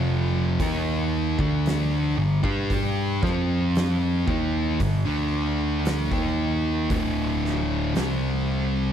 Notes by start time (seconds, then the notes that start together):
Already playing: F1 F2 C3 F3
0.60 D#2 D#3 A#3 D#4, kick, open hi-hat
1.39 D2 D3 A3 D4, kick
1.66 snare, open hi-hat
2.17 G1 G2 D3
2.43 G2 G3 D4 G4, kick
2.70 kick, open hi-hat
3.23 F2 F3 C4 F4, kick, snare
3.75 snare, open hi-hat
4.27 D#2 D#3 A#3 D#4, kick
4.80 G1 G2 D3, kick, open hi-hat
5.06 D2 D3 A3 D4
5.85 snare, open hi-hat
6.11 D#2 D#3 A#3 D#4, kick
6.90 D1 D2 A2 D3, kick, open hi-hat
7.45 snare
7.95 C2 C3 G3 C4, snare, open hi-hat